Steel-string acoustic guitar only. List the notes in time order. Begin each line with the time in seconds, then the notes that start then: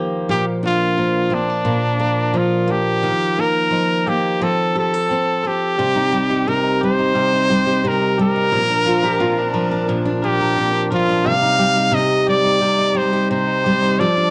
Already playing: D#3 F3 A#3 F4 G4
0.29 A#2
0.63 D4
0.98 F3
1.30 A#3
1.65 A#2
2.00 A#4
2.34 F3
2.68 A#3
3.03 D#3
3.39 D#4
3.71 F3
4.07 A#3
4.41 F3
4.76 G4
4.94 A4
5.11 C4
5.45 C4
5.79 C3
5.96 D#4
6.12 G3
6.31 G4
6.48 C3
6.83 G3
6.99 D#4
7.15 C3
7.34 D#4
7.50 G3
7.67 G4
7.85 C3
8.19 G3
8.36 D#4
8.52 A#2
8.70 D4
8.86 F3
9.03 A#4
9.20 A#2
9.54 F3
9.71 D4
9.89 A#2
10.05 D4
10.24 F3
10.41 A#4
10.58 A#2
10.92 F3
11.09 D4
11.26 C3
11.42 D#4
11.59 G3
11.76 G4
11.91 C3
12.28 G3
12.45 D#4
12.61 C3
12.79 D#4
12.95 G3
13.13 G4
13.31 C3
13.66 G3
13.84 D#4
14.01 F3
14.17 D4